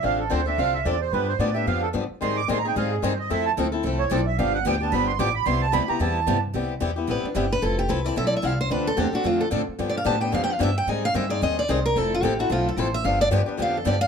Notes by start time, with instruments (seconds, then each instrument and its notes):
0.03 upright bass A1, steel-string acoustic guitar D3 F3 C4 D4 A4, accordion F5
0.19 accordion A4
0.30 upright bass D2, steel-string acoustic guitar D3 F3 C4 D4 A4, accordion C5
0.46 steel-string acoustic guitar C4 D4 A4, accordion E5
0.58 upright bass C2, steel-string acoustic guitar D3 F3 C4 D4 A4, accordion F5
0.74 accordion E5
0.85 upright bass E2, steel-string acoustic guitar D3 F3 C4 D4 A4, accordion D5
1.01 accordion C5
1.12 upright bass G2, steel-string acoustic guitar D3 F3 B3 D4 G4, accordion B4
1.29 accordion C5
1.39 upright bass A2, steel-string acoustic guitar D3 F3 B3 D4 G4, accordion D5
1.54 steel-string acoustic guitar B3 D4 G4, accordion E5
1.67 upright bass F2, steel-string acoustic guitar D3 F3 B3 D4 G4, accordion F5
1.82 accordion A4
1.93 upright bass G2, steel-string acoustic guitar D3 F3 B3 D4 G4
2.10 muted upright bass stroke
2.21 upright bass G#2, steel-string acoustic guitar D#3 G3 C4 D#4 G#4, accordion C6
2.37 accordion D6
2.48 upright bass A2, steel-string acoustic guitar D#3 G3 C4 D#4 G#4, accordion C6
2.58 accordion A#5
2.65 steel-string acoustic guitar C4 D#4 G#4, accordion G5
2.76 upright bass G#2, steel-string acoustic guitar D#3 G3 C4 D#4 G#4, accordion F5
2.91 accordion G#4
3.02 upright bass G2, steel-string acoustic guitar D#3 G3 C4 D#4 G#4, accordion C5
3.19 accordion D#5
3.30 upright bass F2, steel-string acoustic guitar F3 A3 C4 E4 A4, accordion E5
3.46 accordion A5
3.58 upright bass D2, steel-string acoustic guitar F3 A3 C4 E4 A4
3.72 steel-string acoustic guitar C4 E4 A4
3.84 upright bass C2, steel-string acoustic guitar F3 A3 C4 E4 A4
3.99 accordion C#5
4.11 upright bass B1, steel-string acoustic guitar F3 A3 C4 E4 A4, accordion D5
4.26 accordion E5
4.38 upright bass G1, steel-string acoustic guitar D3 F3 B3 D4 G4, accordion F5
4.54 accordion F#5
4.65 upright bass D2, steel-string acoustic guitar D3 F3 B3 D4 G4, accordion G5
4.81 steel-string acoustic guitar B3 D4 G4, accordion A5
4.92 upright bass G1, steel-string acoustic guitar D3 F3 B3 D4 G4, accordion B5
5.07 accordion C6
5.19 upright bass A1, steel-string acoustic guitar D3 F3 B3 D4 G4, accordion D6
5.35 accordion B5
5.46 upright bass C2, steel-string acoustic guitar C3 G3 B3 E4 G4, accordion C6
5.62 accordion A5
5.72 upright bass D2, steel-string acoustic guitar C3 G3 B3 E4 G4, accordion B5
5.88 steel-string acoustic guitar B3 E4 G4, accordion A#5, muted upright bass stroke
6.00 upright bass E2, steel-string acoustic guitar C3 G3 B3 E4 G4, accordion A5
6.27 upright bass G2, steel-string acoustic guitar C3 G3 B3 E4 G4
6.54 upright bass C2, steel-string acoustic guitar C3 G3 B3 E4 G4
6.81 upright bass E2, steel-string acoustic guitar C3 G3 B3 E4 G4
6.96 steel-string acoustic guitar B3 E4 G4
7.08 upright bass A1, steel-string acoustic guitar C3 G3 B3 E4 G4 B4
7.24 steel-string acoustic guitar D4, muted upright bass stroke
7.35 upright bass G1, steel-string acoustic guitar C3 G3 B3 E4 G4
7.52 steel-string acoustic guitar B4
7.62 upright bass F1, steel-string acoustic guitar F3 C4 E4 A4
7.79 steel-string acoustic guitar G4
7.88 upright bass C2, steel-string acoustic guitar F3 C4 E4 A4 B4
8.04 steel-string acoustic guitar C4 E4 A4 D5
8.16 upright bass B1, steel-string acoustic guitar F3 C4 E4 A4 E5
8.27 steel-string acoustic guitar D5
8.36 steel-string acoustic guitar E5
8.43 upright bass C2, steel-string acoustic guitar F3 C4 E4 A4 F5
8.61 steel-string acoustic guitar C5
8.70 upright bass D2, steel-string acoustic guitar D3 F3 A3 C4 D4 F4 A4 B4
8.87 steel-string acoustic guitar A4
8.97 upright bass E2, steel-string acoustic guitar D3 F3 A3 C4 D4 F4 G4 A4
9.13 steel-string acoustic guitar C4 D4 F#4 A4, muted upright bass stroke
9.24 upright bass F2, steel-string acoustic guitar D3 F3 A3 C4 D4 F4 A4
9.41 steel-string acoustic guitar A4
9.51 upright bass A2, steel-string acoustic guitar D3 F3 A3 C4 D4 F4 A4
9.68 muted upright bass stroke
9.79 upright bass G2, steel-string acoustic guitar D3 F3 B3 D4 G4
9.89 steel-string acoustic guitar D5
9.97 steel-string acoustic guitar F5
10.05 upright bass A2, steel-string acoustic guitar D3 F3 B3 D4 G4 A5
10.20 steel-string acoustic guitar B3 D4 G4 G5
10.32 upright bass F2, steel-string acoustic guitar D3 F3 B3 D4 G4 F5
10.44 steel-string acoustic guitar G5
10.53 steel-string acoustic guitar F5
10.59 upright bass G2, steel-string acoustic guitar D3 F3 B3 D4 G4 E5
10.78 steel-string acoustic guitar G5
10.87 upright bass G#2, steel-string acoustic guitar D#3 G3 C4 D#4 G#4 G#5
11.05 steel-string acoustic guitar F5
11.14 upright bass G2, steel-string acoustic guitar D#3 G3 C4 D#4 G#4 E5
11.29 steel-string acoustic guitar C4 D#4 G#4 D5
11.42 upright bass D#2, steel-string acoustic guitar D#3 G3 C4 D#4 G#4 D#5
11.59 steel-string acoustic guitar D5
11.69 upright bass C2, steel-string acoustic guitar D#3 G3 C4 D#4 G#4 C5
11.86 steel-string acoustic guitar A#4
11.96 upright bass F1, steel-string acoustic guitar F3 A3 C4 E4 A4
12.14 steel-string acoustic guitar F4
12.22 upright bass A1, steel-string acoustic guitar F3 A3 C4 E4 G4 A4
12.39 steel-string acoustic guitar C4 E4 F#4 A4
12.50 upright bass B1, steel-string acoustic guitar F3 A3 C4 E4 F4 A4
12.69 steel-string acoustic guitar A4
12.77 upright bass A1, steel-string acoustic guitar F3 A3 C4 E4 A4 C5
12.94 steel-string acoustic guitar E5
13.04 upright bass G1, steel-string acoustic guitar D3 F3 B3 D4 G4 F5
13.21 steel-string acoustic guitar D5
13.31 upright bass G2, steel-string acoustic guitar D3 F3 B3 D4 G4
13.46 steel-string acoustic guitar B3 D4 G4, muted upright bass stroke
13.57 upright bass F2, steel-string acoustic guitar D3 F3 B3 D4 G4
13.62 steel-string acoustic guitar F5
13.77 steel-string acoustic guitar A4
13.85 upright bass G2, steel-string acoustic guitar D3 F3 B3 D4 G4 D5
14.01 steel-string acoustic guitar F5